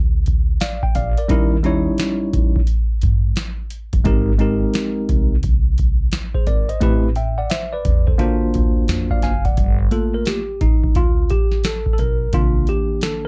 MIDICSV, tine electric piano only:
0, 0, Header, 1, 2, 480
1, 0, Start_track
1, 0, Key_signature, -2, "minor"
1, 0, Tempo, 689655
1, 903, Time_signature, 4, 2, 24, 8
1, 9241, End_track
2, 0, Start_track
2, 0, Title_t, "Tine electric piano"
2, 0, Program_c, 0, 4
2, 424, Note_on_c, 0, 77, 59
2, 428, Note_on_c, 0, 74, 53
2, 570, Note_off_c, 0, 77, 0
2, 572, Note_off_c, 0, 74, 0
2, 577, Note_on_c, 0, 79, 72
2, 659, Note_off_c, 0, 79, 0
2, 664, Note_on_c, 0, 77, 64
2, 668, Note_on_c, 0, 74, 54
2, 810, Note_off_c, 0, 77, 0
2, 812, Note_off_c, 0, 74, 0
2, 822, Note_on_c, 0, 74, 58
2, 825, Note_on_c, 0, 70, 49
2, 894, Note_on_c, 0, 55, 88
2, 899, Note_on_c, 0, 61, 76
2, 904, Note_on_c, 0, 63, 78
2, 905, Note_off_c, 0, 70, 0
2, 909, Note_on_c, 0, 64, 82
2, 913, Note_on_c, 0, 70, 93
2, 1048, Note_off_c, 0, 74, 0
2, 1079, Note_off_c, 0, 55, 0
2, 1082, Note_off_c, 0, 61, 0
2, 1084, Note_off_c, 0, 63, 0
2, 1087, Note_off_c, 0, 64, 0
2, 1089, Note_off_c, 0, 70, 0
2, 1136, Note_on_c, 0, 55, 80
2, 1141, Note_on_c, 0, 61, 77
2, 1144, Note_on_c, 0, 63, 76
2, 1151, Note_on_c, 0, 64, 75
2, 1155, Note_on_c, 0, 73, 85
2, 1794, Note_off_c, 0, 55, 0
2, 1796, Note_off_c, 0, 61, 0
2, 1798, Note_off_c, 0, 63, 0
2, 1802, Note_off_c, 0, 64, 0
2, 1803, Note_off_c, 0, 73, 0
2, 2815, Note_on_c, 0, 56, 88
2, 2819, Note_on_c, 0, 60, 79
2, 2822, Note_on_c, 0, 63, 83
2, 2826, Note_on_c, 0, 67, 78
2, 2833, Note_on_c, 0, 70, 91
2, 2999, Note_off_c, 0, 56, 0
2, 3001, Note_off_c, 0, 60, 0
2, 3003, Note_off_c, 0, 63, 0
2, 3005, Note_off_c, 0, 67, 0
2, 3009, Note_off_c, 0, 70, 0
2, 3052, Note_on_c, 0, 56, 85
2, 3058, Note_on_c, 0, 60, 74
2, 3063, Note_on_c, 0, 63, 80
2, 3068, Note_on_c, 0, 67, 74
2, 3071, Note_on_c, 0, 70, 90
2, 3712, Note_off_c, 0, 56, 0
2, 3715, Note_off_c, 0, 60, 0
2, 3717, Note_off_c, 0, 63, 0
2, 3720, Note_off_c, 0, 67, 0
2, 3722, Note_off_c, 0, 70, 0
2, 4416, Note_on_c, 0, 72, 69
2, 4420, Note_on_c, 0, 68, 58
2, 4498, Note_off_c, 0, 72, 0
2, 4500, Note_off_c, 0, 68, 0
2, 4503, Note_on_c, 0, 74, 72
2, 4507, Note_on_c, 0, 70, 54
2, 4649, Note_off_c, 0, 74, 0
2, 4652, Note_off_c, 0, 70, 0
2, 4656, Note_on_c, 0, 75, 57
2, 4660, Note_on_c, 0, 72, 56
2, 4736, Note_on_c, 0, 57, 84
2, 4742, Note_on_c, 0, 60, 79
2, 4745, Note_on_c, 0, 64, 76
2, 4749, Note_on_c, 0, 67, 79
2, 4754, Note_on_c, 0, 71, 99
2, 4884, Note_off_c, 0, 75, 0
2, 4886, Note_off_c, 0, 72, 0
2, 4920, Note_off_c, 0, 57, 0
2, 4923, Note_off_c, 0, 60, 0
2, 4925, Note_off_c, 0, 64, 0
2, 4927, Note_off_c, 0, 67, 0
2, 4929, Note_off_c, 0, 71, 0
2, 4984, Note_on_c, 0, 79, 59
2, 4989, Note_on_c, 0, 76, 48
2, 5130, Note_off_c, 0, 79, 0
2, 5133, Note_off_c, 0, 76, 0
2, 5136, Note_on_c, 0, 78, 66
2, 5140, Note_on_c, 0, 74, 59
2, 5218, Note_off_c, 0, 78, 0
2, 5220, Note_off_c, 0, 74, 0
2, 5223, Note_on_c, 0, 76, 61
2, 5228, Note_on_c, 0, 72, 57
2, 5369, Note_off_c, 0, 76, 0
2, 5372, Note_off_c, 0, 72, 0
2, 5378, Note_on_c, 0, 74, 69
2, 5383, Note_on_c, 0, 71, 59
2, 5606, Note_off_c, 0, 74, 0
2, 5608, Note_off_c, 0, 71, 0
2, 5617, Note_on_c, 0, 72, 58
2, 5621, Note_on_c, 0, 69, 48
2, 5694, Note_on_c, 0, 58, 88
2, 5700, Note_on_c, 0, 62, 84
2, 5703, Note_on_c, 0, 65, 83
2, 5705, Note_off_c, 0, 72, 0
2, 5708, Note_on_c, 0, 66, 78
2, 5713, Note_on_c, 0, 72, 96
2, 5847, Note_off_c, 0, 69, 0
2, 6339, Note_on_c, 0, 77, 68
2, 6343, Note_on_c, 0, 74, 53
2, 6420, Note_off_c, 0, 77, 0
2, 6422, Note_off_c, 0, 74, 0
2, 6425, Note_on_c, 0, 80, 68
2, 6429, Note_on_c, 0, 77, 58
2, 6480, Note_off_c, 0, 58, 0
2, 6483, Note_off_c, 0, 62, 0
2, 6485, Note_off_c, 0, 65, 0
2, 6487, Note_off_c, 0, 66, 0
2, 6490, Note_off_c, 0, 72, 0
2, 6570, Note_off_c, 0, 80, 0
2, 6572, Note_off_c, 0, 77, 0
2, 6578, Note_on_c, 0, 78, 61
2, 6581, Note_on_c, 0, 74, 48
2, 6805, Note_off_c, 0, 78, 0
2, 6807, Note_off_c, 0, 74, 0
2, 6898, Note_on_c, 0, 57, 52
2, 6901, Note_on_c, 0, 58, 49
2, 6904, Note_on_c, 0, 69, 82
2, 6906, Note_on_c, 0, 65, 57
2, 7047, Note_off_c, 0, 69, 0
2, 7060, Note_on_c, 0, 70, 77
2, 7146, Note_on_c, 0, 67, 77
2, 7147, Note_off_c, 0, 70, 0
2, 7246, Note_off_c, 0, 57, 0
2, 7247, Note_off_c, 0, 58, 0
2, 7249, Note_off_c, 0, 65, 0
2, 7386, Note_on_c, 0, 63, 76
2, 7392, Note_off_c, 0, 67, 0
2, 7630, Note_on_c, 0, 65, 83
2, 7632, Note_off_c, 0, 63, 0
2, 7868, Note_on_c, 0, 67, 83
2, 7874, Note_off_c, 0, 65, 0
2, 8109, Note_on_c, 0, 69, 80
2, 8112, Note_off_c, 0, 67, 0
2, 8297, Note_off_c, 0, 69, 0
2, 8306, Note_on_c, 0, 69, 71
2, 8342, Note_off_c, 0, 69, 0
2, 8348, Note_on_c, 0, 70, 88
2, 8581, Note_on_c, 0, 51, 56
2, 8585, Note_on_c, 0, 58, 48
2, 8589, Note_on_c, 0, 62, 63
2, 8590, Note_on_c, 0, 65, 90
2, 8592, Note_off_c, 0, 70, 0
2, 8831, Note_on_c, 0, 67, 82
2, 8833, Note_off_c, 0, 65, 0
2, 9050, Note_off_c, 0, 67, 0
2, 9068, Note_on_c, 0, 69, 82
2, 9224, Note_off_c, 0, 69, 0
2, 9241, Note_off_c, 0, 51, 0
2, 9241, Note_off_c, 0, 58, 0
2, 9241, Note_off_c, 0, 62, 0
2, 9241, End_track
0, 0, End_of_file